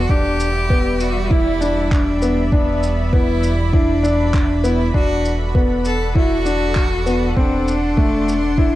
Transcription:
0.00 0.12 F#4 loud
0.00 4.91 D5 medium
0.09 4.91 E1 medium
0.09 4.90 G3 medium
0.09 0.46 D4 medium
0.09 1.02 G4 loud
0.09 4.90 E5 medium
0.09 7.33 B5 medium
0.09 kick loud
0.40 shaker medium
0.70 1.06 B3 medium
0.70 kick loud
1.00 1.32 F#4 loud
1.00 shaker medium
1.30 1.48 E4 loud
1.30 1.93 E4 loud
1.30 kick loud
1.61 1.97 D4 medium
1.61 shaker medium
1.91 2.55 D4 loud
1.91 kick loud
1.91 clap medium
2.22 2.40 B3 medium
2.22 shaker medium
2.52 3.15 B3 medium
2.52 2.88 D4 medium
2.52 kick loud
2.83 shaker medium
3.13 3.49 B3 medium
3.13 3.75 E4 loud
3.13 kick loud
3.43 shaker medium
3.73 4.65 D4 loud
3.73 3.91 E4 loud
3.73 kick loud
4.03 4.39 D4 medium
4.03 shaker medium
4.34 kick loud
4.34 clap medium
4.64 4.82 B3 medium
4.64 4.94 E4 loud
4.64 shaker medium
4.93 7.34 E1 medium
4.93 5.30 D4 loud
4.93 5.51 F#4 loud
4.93 8.75 A4 medium
4.93 8.75 D5 medium
4.93 8.75 F#5 medium
4.93 kick medium
5.25 shaker medium
5.55 5.91 B3 medium
5.55 kick loud
5.85 6.14 A4 loud
5.85 shaker medium
6.15 6.34 E4 loud
6.15 7.38 F#4 loud
6.15 kick loud
6.45 6.82 D4 medium
6.45 shaker medium
6.75 kick medium
6.75 clap medium
7.06 7.24 B3 medium
7.06 shaker medium
7.36 8.75 E1 medium
7.36 7.73 C4 medium
7.36 8.75 D4 loud
7.36 8.75 C6 medium
7.36 kick loud
7.68 shaker medium
7.97 8.33 A3 medium
7.97 kick loud
8.29 shaker medium
8.58 8.75 E4 loud
8.58 kick loud

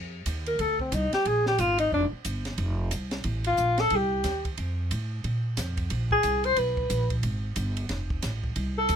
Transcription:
0.00 0.25 F2 medium
0.26 0.58 D#2 medium
0.26 kick soft
0.26 hi-hat pedal medium
0.26 ride medium
0.46 0.62 A#4 medium
0.46 ride soft
0.59 0.91 D2 medium
0.59 0.80 A4 medium
0.59 kick soft
0.59 ride medium
0.80 0.95 C4 medium
0.80 kick soft
0.92 1.11 C2 medium
0.92 1.14 D#4 medium
0.92 kick soft
0.92 hi-hat pedal medium
0.92 ride medium
1.13 1.29 G4 medium
1.13 snare soft
1.13 ride soft
1.25 1.58 A#1 medium
1.25 1.47 G#4 medium
1.25 kick soft
1.25 ride medium
1.46 1.61 G4 medium
1.46 snare soft
1.58 1.91 G#1 medium
1.58 1.79 F4 medium
1.58 kick soft
1.58 hi-hat pedal medium
1.58 ride medium
1.78 1.91 D#4 medium
1.78 ride medium
1.92 2.11 F1 medium
1.92 2.06 D4 medium
1.92 kick soft
2.12 muted upright bass stroke soft
2.25 2.57 G1 medium
2.25 kick soft
2.25 hi-hat pedal medium
2.25 ride medium
2.45 snare soft
2.45 ride soft
2.58 2.90 F1 medium
2.58 kick soft
2.58 ride medium
2.91 3.24 C2 medium
2.91 kick soft
2.91 hi-hat pedal medium
2.91 ride medium
3.11 snare medium
3.11 ride soft
3.24 3.57 A1 medium
3.24 kick soft
3.24 ride medium
3.44 3.82 F4 medium
3.44 ride medium
3.57 3.90 A#1 medium
3.57 kick soft
3.57 hi-hat pedal medium
3.78 3.98 A4 loud
3.78 snare soft
3.78 ride soft
3.90 4.23 C2 medium
3.90 kick soft
3.90 ride medium
3.96 4.47 G4 medium
4.24 4.57 D#2 medium
4.24 kick soft
4.24 snare soft
4.24 hi-hat pedal medium
4.24 ride medium
4.45 kick soft
4.45 ride soft
4.58 4.90 F2 medium
4.58 kick soft
4.58 ride medium
4.91 5.23 A2 medium
4.91 kick soft
4.91 hi-hat pedal soft
4.91 ride medium
5.24 5.56 A#2 medium
5.24 kick soft
5.24 ride medium
5.57 5.89 F2 medium
5.57 kick soft
5.57 snare soft
5.57 hi-hat pedal medium
5.57 ride medium
5.77 kick medium
5.77 ride soft
5.90 6.23 A#1 medium
5.90 kick soft
5.90 ride medium
6.11 6.47 G#4 medium
6.11 kick medium
6.23 6.56 C2 medium
6.23 kick soft
6.23 hi-hat pedal medium
6.23 ride medium
6.44 6.60 C5 loud
6.44 ride soft
6.56 6.89 B1 medium
6.56 7.11 B4 medium
6.56 kick soft
6.56 ride medium
6.77 kick medium
6.90 7.22 A#1 medium
6.90 hi-hat pedal medium
6.90 ride medium
7.10 kick medium
7.10 ride soft
7.23 7.55 G#1 medium
7.23 kick soft
7.23 ride medium
7.56 7.89 G1 medium
7.56 kick soft
7.56 hi-hat pedal medium
7.56 ride medium
7.77 ride medium
7.89 8.22 F1 medium
7.89 kick soft
7.89 snare soft
7.89 ride medium
8.10 kick medium
8.22 8.55 A1 medium
8.22 kick soft
8.22 snare soft
8.22 hi-hat pedal medium
8.22 ride medium
8.44 kick medium
8.56 8.88 C2 medium
8.56 kick soft
8.56 ride medium
8.78 8.96 A4 medium
8.89 8.96 D2 loud
8.89 kick soft
8.89 hi-hat pedal soft
8.89 ride medium

